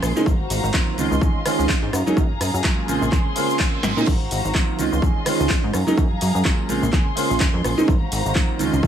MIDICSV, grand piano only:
0, 0, Header, 1, 2, 480
1, 0, Start_track
1, 0, Key_signature, -5, "major"
1, 0, Tempo, 476190
1, 264, Time_signature, 4, 2, 24, 8
1, 8943, End_track
2, 0, Start_track
2, 0, Title_t, "Grand piano"
2, 0, Program_c, 0, 0
2, 0, Note_on_c, 0, 49, 88
2, 0, Note_on_c, 0, 56, 84
2, 0, Note_on_c, 0, 58, 82
2, 0, Note_on_c, 0, 60, 83
2, 0, Note_on_c, 0, 65, 99
2, 124, Note_off_c, 0, 49, 0
2, 127, Note_off_c, 0, 56, 0
2, 129, Note_off_c, 0, 58, 0
2, 131, Note_off_c, 0, 60, 0
2, 132, Note_off_c, 0, 65, 0
2, 159, Note_on_c, 0, 49, 86
2, 159, Note_on_c, 0, 56, 78
2, 163, Note_on_c, 0, 58, 76
2, 164, Note_on_c, 0, 60, 76
2, 167, Note_on_c, 0, 63, 93
2, 251, Note_off_c, 0, 49, 0
2, 252, Note_off_c, 0, 56, 0
2, 254, Note_off_c, 0, 58, 0
2, 254, Note_off_c, 0, 60, 0
2, 256, Note_off_c, 0, 63, 0
2, 743, Note_on_c, 0, 51, 75
2, 746, Note_on_c, 0, 54, 72
2, 746, Note_on_c, 0, 58, 70
2, 750, Note_on_c, 0, 60, 70
2, 751, Note_on_c, 0, 65, 86
2, 958, Note_off_c, 0, 51, 0
2, 960, Note_off_c, 0, 54, 0
2, 960, Note_off_c, 0, 58, 0
2, 962, Note_off_c, 0, 60, 0
2, 963, Note_off_c, 0, 65, 0
2, 988, Note_on_c, 0, 51, 88
2, 989, Note_on_c, 0, 56, 79
2, 991, Note_on_c, 0, 60, 81
2, 992, Note_on_c, 0, 61, 85
2, 996, Note_on_c, 0, 65, 98
2, 1138, Note_off_c, 0, 51, 0
2, 1139, Note_off_c, 0, 56, 0
2, 1140, Note_off_c, 0, 60, 0
2, 1141, Note_off_c, 0, 61, 0
2, 1142, Note_off_c, 0, 65, 0
2, 1227, Note_on_c, 0, 51, 68
2, 1229, Note_on_c, 0, 60, 66
2, 1230, Note_on_c, 0, 56, 67
2, 1234, Note_on_c, 0, 61, 67
2, 1236, Note_on_c, 0, 68, 80
2, 1378, Note_off_c, 0, 51, 0
2, 1379, Note_off_c, 0, 56, 0
2, 1379, Note_off_c, 0, 60, 0
2, 1381, Note_off_c, 0, 61, 0
2, 1382, Note_off_c, 0, 68, 0
2, 1467, Note_on_c, 0, 51, 89
2, 1468, Note_on_c, 0, 56, 81
2, 1470, Note_on_c, 0, 60, 86
2, 1472, Note_on_c, 0, 61, 81
2, 1476, Note_on_c, 0, 65, 97
2, 1933, Note_off_c, 0, 51, 0
2, 1934, Note_off_c, 0, 56, 0
2, 1935, Note_off_c, 0, 60, 0
2, 1936, Note_off_c, 0, 61, 0
2, 1938, Note_off_c, 0, 65, 0
2, 2080, Note_on_c, 0, 54, 85
2, 2082, Note_on_c, 0, 56, 75
2, 2084, Note_on_c, 0, 58, 76
2, 2086, Note_on_c, 0, 61, 76
2, 2088, Note_on_c, 0, 63, 94
2, 2207, Note_off_c, 0, 54, 0
2, 2208, Note_off_c, 0, 56, 0
2, 2209, Note_off_c, 0, 58, 0
2, 2210, Note_off_c, 0, 61, 0
2, 2211, Note_off_c, 0, 63, 0
2, 2660, Note_on_c, 0, 54, 78
2, 2661, Note_on_c, 0, 56, 72
2, 2665, Note_on_c, 0, 58, 70
2, 2665, Note_on_c, 0, 61, 71
2, 2669, Note_on_c, 0, 65, 88
2, 2877, Note_off_c, 0, 54, 0
2, 2878, Note_off_c, 0, 56, 0
2, 2879, Note_off_c, 0, 58, 0
2, 2879, Note_off_c, 0, 61, 0
2, 2881, Note_off_c, 0, 65, 0
2, 2902, Note_on_c, 0, 49, 92
2, 2906, Note_on_c, 0, 56, 75
2, 2907, Note_on_c, 0, 58, 82
2, 2910, Note_on_c, 0, 60, 80
2, 2911, Note_on_c, 0, 65, 96
2, 3055, Note_off_c, 0, 49, 0
2, 3057, Note_off_c, 0, 56, 0
2, 3058, Note_off_c, 0, 58, 0
2, 3059, Note_off_c, 0, 60, 0
2, 3060, Note_off_c, 0, 65, 0
2, 3144, Note_on_c, 0, 49, 73
2, 3146, Note_on_c, 0, 56, 69
2, 3149, Note_on_c, 0, 58, 65
2, 3151, Note_on_c, 0, 60, 68
2, 3153, Note_on_c, 0, 68, 83
2, 3296, Note_off_c, 0, 49, 0
2, 3297, Note_off_c, 0, 56, 0
2, 3299, Note_off_c, 0, 58, 0
2, 3300, Note_off_c, 0, 60, 0
2, 3301, Note_off_c, 0, 68, 0
2, 3379, Note_on_c, 0, 49, 86
2, 3382, Note_on_c, 0, 56, 80
2, 3387, Note_on_c, 0, 58, 86
2, 3391, Note_on_c, 0, 60, 86
2, 3396, Note_on_c, 0, 65, 98
2, 3964, Note_off_c, 0, 49, 0
2, 3965, Note_off_c, 0, 56, 0
2, 3968, Note_off_c, 0, 58, 0
2, 3970, Note_off_c, 0, 60, 0
2, 3972, Note_off_c, 0, 65, 0
2, 3996, Note_on_c, 0, 49, 80
2, 3998, Note_on_c, 0, 56, 75
2, 4001, Note_on_c, 0, 58, 77
2, 4001, Note_on_c, 0, 60, 73
2, 4004, Note_on_c, 0, 63, 93
2, 4090, Note_off_c, 0, 49, 0
2, 4091, Note_off_c, 0, 56, 0
2, 4092, Note_off_c, 0, 58, 0
2, 4093, Note_off_c, 0, 60, 0
2, 4094, Note_off_c, 0, 63, 0
2, 4585, Note_on_c, 0, 51, 82
2, 4588, Note_on_c, 0, 54, 75
2, 4589, Note_on_c, 0, 58, 71
2, 4593, Note_on_c, 0, 60, 71
2, 4594, Note_on_c, 0, 65, 87
2, 4799, Note_off_c, 0, 51, 0
2, 4801, Note_off_c, 0, 54, 0
2, 4802, Note_off_c, 0, 58, 0
2, 4803, Note_off_c, 0, 60, 0
2, 4804, Note_off_c, 0, 65, 0
2, 4827, Note_on_c, 0, 51, 83
2, 4827, Note_on_c, 0, 56, 79
2, 4830, Note_on_c, 0, 60, 79
2, 4832, Note_on_c, 0, 61, 82
2, 4834, Note_on_c, 0, 65, 96
2, 4978, Note_off_c, 0, 51, 0
2, 4978, Note_off_c, 0, 56, 0
2, 4979, Note_off_c, 0, 60, 0
2, 4980, Note_off_c, 0, 61, 0
2, 4981, Note_off_c, 0, 65, 0
2, 5065, Note_on_c, 0, 51, 72
2, 5067, Note_on_c, 0, 56, 66
2, 5068, Note_on_c, 0, 60, 65
2, 5070, Note_on_c, 0, 61, 67
2, 5074, Note_on_c, 0, 68, 80
2, 5217, Note_off_c, 0, 51, 0
2, 5218, Note_off_c, 0, 56, 0
2, 5218, Note_off_c, 0, 60, 0
2, 5219, Note_off_c, 0, 61, 0
2, 5221, Note_off_c, 0, 68, 0
2, 5301, Note_on_c, 0, 51, 94
2, 5304, Note_on_c, 0, 56, 83
2, 5305, Note_on_c, 0, 60, 84
2, 5307, Note_on_c, 0, 61, 86
2, 5310, Note_on_c, 0, 65, 93
2, 5770, Note_off_c, 0, 51, 0
2, 5771, Note_off_c, 0, 56, 0
2, 5772, Note_off_c, 0, 60, 0
2, 5773, Note_off_c, 0, 61, 0
2, 5774, Note_off_c, 0, 65, 0
2, 5914, Note_on_c, 0, 54, 87
2, 5915, Note_on_c, 0, 56, 76
2, 5918, Note_on_c, 0, 58, 76
2, 5920, Note_on_c, 0, 61, 80
2, 5923, Note_on_c, 0, 63, 94
2, 6044, Note_off_c, 0, 54, 0
2, 6045, Note_off_c, 0, 56, 0
2, 6046, Note_off_c, 0, 58, 0
2, 6047, Note_off_c, 0, 61, 0
2, 6049, Note_off_c, 0, 63, 0
2, 6502, Note_on_c, 0, 54, 75
2, 6503, Note_on_c, 0, 56, 70
2, 6505, Note_on_c, 0, 58, 72
2, 6508, Note_on_c, 0, 61, 68
2, 6510, Note_on_c, 0, 65, 85
2, 6718, Note_off_c, 0, 54, 0
2, 6718, Note_off_c, 0, 56, 0
2, 6719, Note_off_c, 0, 58, 0
2, 6721, Note_off_c, 0, 61, 0
2, 6722, Note_off_c, 0, 65, 0
2, 6737, Note_on_c, 0, 49, 84
2, 6740, Note_on_c, 0, 56, 81
2, 6741, Note_on_c, 0, 58, 83
2, 6742, Note_on_c, 0, 60, 81
2, 6745, Note_on_c, 0, 65, 102
2, 6893, Note_off_c, 0, 49, 0
2, 6894, Note_off_c, 0, 56, 0
2, 6895, Note_off_c, 0, 58, 0
2, 6895, Note_off_c, 0, 60, 0
2, 6897, Note_off_c, 0, 65, 0
2, 6975, Note_on_c, 0, 49, 73
2, 6978, Note_on_c, 0, 56, 68
2, 6980, Note_on_c, 0, 58, 67
2, 6982, Note_on_c, 0, 60, 64
2, 6982, Note_on_c, 0, 68, 83
2, 7132, Note_off_c, 0, 49, 0
2, 7133, Note_off_c, 0, 56, 0
2, 7134, Note_off_c, 0, 58, 0
2, 7135, Note_off_c, 0, 60, 0
2, 7135, Note_off_c, 0, 68, 0
2, 7212, Note_on_c, 0, 49, 91
2, 7215, Note_on_c, 0, 56, 84
2, 7219, Note_on_c, 0, 58, 86
2, 7222, Note_on_c, 0, 60, 80
2, 7229, Note_on_c, 0, 65, 98
2, 7800, Note_off_c, 0, 49, 0
2, 7802, Note_off_c, 0, 56, 0
2, 7804, Note_off_c, 0, 58, 0
2, 7805, Note_off_c, 0, 60, 0
2, 7809, Note_off_c, 0, 65, 0
2, 7831, Note_on_c, 0, 49, 80
2, 7834, Note_on_c, 0, 56, 79
2, 7836, Note_on_c, 0, 58, 80
2, 7838, Note_on_c, 0, 60, 77
2, 7840, Note_on_c, 0, 63, 95
2, 7928, Note_off_c, 0, 49, 0
2, 7929, Note_off_c, 0, 56, 0
2, 7930, Note_off_c, 0, 58, 0
2, 7931, Note_off_c, 0, 60, 0
2, 7932, Note_off_c, 0, 63, 0
2, 8416, Note_on_c, 0, 51, 79
2, 8417, Note_on_c, 0, 54, 69
2, 8420, Note_on_c, 0, 58, 74
2, 8422, Note_on_c, 0, 60, 74
2, 8424, Note_on_c, 0, 65, 91
2, 8635, Note_off_c, 0, 51, 0
2, 8635, Note_off_c, 0, 54, 0
2, 8637, Note_off_c, 0, 58, 0
2, 8638, Note_off_c, 0, 60, 0
2, 8639, Note_off_c, 0, 65, 0
2, 8657, Note_on_c, 0, 51, 91
2, 8660, Note_on_c, 0, 56, 81
2, 8661, Note_on_c, 0, 60, 82
2, 8662, Note_on_c, 0, 61, 81
2, 8664, Note_on_c, 0, 65, 94
2, 8813, Note_off_c, 0, 51, 0
2, 8814, Note_off_c, 0, 56, 0
2, 8815, Note_off_c, 0, 60, 0
2, 8815, Note_off_c, 0, 61, 0
2, 8816, Note_off_c, 0, 65, 0
2, 8896, Note_on_c, 0, 51, 73
2, 8897, Note_on_c, 0, 56, 69
2, 8899, Note_on_c, 0, 60, 71
2, 8902, Note_on_c, 0, 61, 67
2, 8903, Note_on_c, 0, 68, 80
2, 8943, Note_off_c, 0, 51, 0
2, 8943, Note_off_c, 0, 56, 0
2, 8943, Note_off_c, 0, 60, 0
2, 8943, Note_off_c, 0, 61, 0
2, 8943, Note_off_c, 0, 68, 0
2, 8943, End_track
0, 0, End_of_file